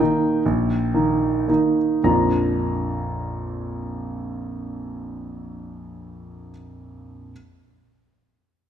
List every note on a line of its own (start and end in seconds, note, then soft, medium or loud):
0.00 0.42 D#3 soft
0.00 0.42 A#3 soft
0.00 0.42 D#4 soft
0.00 1.77 G5 medium
0.46 0.92 A#1 soft
0.94 1.44 D#3 soft
0.94 1.44 A#3 soft
0.94 1.44 D#4 soft
1.48 2.01 D#3 soft
1.48 2.02 A#3 soft
1.48 2.02 D#4 soft
2.04 6.49 A#1 soft
2.04 6.50 F2 soft
2.04 6.50 F3 soft
2.04 6.50 A#3 soft
2.04 6.50 D4 soft
2.04 6.51 F4 soft
2.04 6.50 A#5 soft